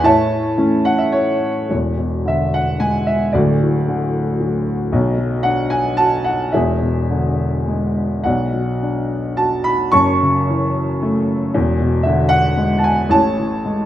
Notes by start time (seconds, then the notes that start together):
0.03 A2 C#5 E5 A5
0.57 E3 A3 C#4
0.85 F#5
0.98 E5
1.12 C#5
1.69 E1 E2
1.98 B2
2.25 D3 E5
2.54 F#5
2.80 G#3 G#5
3.07 E5
3.32 D1 D2 F#4 D5
3.62 A2
3.88 D3
4.40 F#3
4.92 B1 B2
5.18 F#3
5.43 D4 F#5
5.70 G#5
5.97 F#4 A5
6.24 F#5
6.52 E1 E2 G#4 E5
6.81 B2
7.10 D3
7.67 G#3
8.24 B1 B2 D5 F#5
8.53 F#3
8.82 D4
9.37 F#4 A5
9.64 B5
9.92 F#1 F#2 A5 C#6
10.22 C#3
10.49 E3
11.02 A3
11.54 E1 E2
11.80 B2
12.03 D3 E5
12.29 F#5
12.57 G#3
12.78 A5
12.84 G#5
13.09 A1 A2 C#5 A5
13.38 E3
13.65 G#3